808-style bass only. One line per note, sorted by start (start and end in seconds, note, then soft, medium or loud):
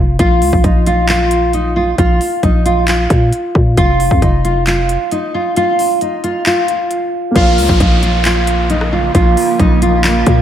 0.00 0.18 F1 loud
0.19 0.43 A#1 loud
0.42 0.52 C#2 loud
0.53 0.64 A#1 loud
0.64 1.94 A#1 loud
1.98 2.20 A#1 loud
2.43 3.08 A#1 loud
3.10 3.32 A#2 loud
3.55 3.77 A#2 loud
3.77 4.10 F1 loud
4.11 4.22 F2 loud
4.22 4.97 F1 loud
7.36 7.60 A#1 loud
7.58 7.69 C#2 loud
7.69 7.80 A#1 loud
7.80 9.11 A#1 loud
9.15 9.36 A#1 loud
9.60 10.24 A#1 loud
10.27 10.42 A#2 loud